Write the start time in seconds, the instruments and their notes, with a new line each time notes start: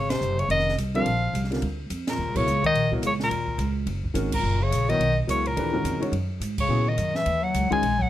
Already playing: upright bass G#1, bass clarinet C#3, soprano saxophone C#5
0.10 bass clarinet C3, soprano saxophone C5, snare, ride
0.21 upright bass F#1, hi-hat pedal
0.39 bass clarinet C#3, soprano saxophone C#5, ride
0.48 upright bass F1, bass clarinet D#3, soprano saxophone D#5, ride
0.59 snare
0.69 snare
0.77 upright bass C2, hi-hat pedal, ride
0.94 grand piano D3 G3 C4 F4 A#4, bass clarinet F3, soprano saxophone F5, ride
1.05 upright bass A#1, ride
1.33 upright bass C2, hi-hat pedal, ride
1.44 snare
1.51 grand piano D3 G3 C4 F4 A#4, snare, ride
1.62 upright bass D2, ride
1.90 upright bass F2, hi-hat pedal, ride
2.07 bass clarinet A#2, soprano saxophone A#4, snare, ride
2.18 upright bass D#2
2.28 upright bass C#2
2.35 upright bass A#1, bass clarinet C#3, grand piano F#3 B3 E4 A#4 C#5, soprano saxophone C#5, kick, crash
2.46 upright bass C#2, hi-hat pedal
2.64 bass clarinet D#3, soprano saxophone D#5, kick, ride
2.74 upright bass A#1, ride
2.91 grand piano F#3 B3 E4 A#4 C#5, kick
3.02 upright bass C#2, bass clarinet C#3, hi-hat pedal, ride
3.07 soprano saxophone C#5
3.20 bass clarinet A#2, soprano saxophone A#4, snare
3.30 upright bass D#2, ride
3.48 kick
3.58 upright bass C#2, hi-hat pedal, ride
3.86 upright bass F#1, ride
4.04 kick
4.14 upright bass G#1, grand piano D#3 G#3 C#4 F#4 A#4, hi-hat pedal, ride
4.32 bass clarinet A#2, soprano saxophone A#4, kick, crash
4.43 upright bass F#1
4.61 bass clarinet C#3, soprano saxophone C#5
4.71 upright bass A#1, hi-hat pedal, ride
4.88 bass clarinet D#3, grand piano F#3 B3 E4 A#4 C#5, soprano saxophone D#5, ride
4.99 upright bass B1, ride
5.27 upright bass C#2, bass clarinet C#3, grand piano F#3 B3 E4 A#4 C#5, soprano saxophone C#5, hi-hat pedal, ride
5.46 bass clarinet A#2, soprano saxophone A#4, ride
5.56 upright bass D#2, grand piano E3 A3 D4 G4 B4, ride
5.73 grand piano D#3 G#3 C#4 F#4 A#4
5.84 upright bass F2, hi-hat pedal, ride
6.00 grand piano D#3 G#3 C#4 F#4 C#5, muted upright bass stroke, ride
6.12 upright bass F#2, ride
6.40 upright bass G#2, hi-hat pedal, ride
6.58 bass clarinet C#3, soprano saxophone C#5, kick, crash
6.68 upright bass A#2, grand piano C#3 F#3 B3 E4 G#4
6.88 bass clarinet D#3, soprano saxophone D#5
6.98 upright bass F#2, hi-hat pedal, ride
7.15 bass clarinet E3, soprano saxophone E5, snare
7.26 upright bass D#2, ride
7.42 bass clarinet F#3, soprano saxophone F#5
7.54 upright bass C#2, hi-hat pedal, ride
7.70 grand piano D#3 G#3 C#4 F#4 G#4, bass clarinet G#3, soprano saxophone G#5, muted upright bass stroke, kick, ride
7.82 upright bass A#1, ride
7.99 bass clarinet F#3, soprano saxophone F#5, kick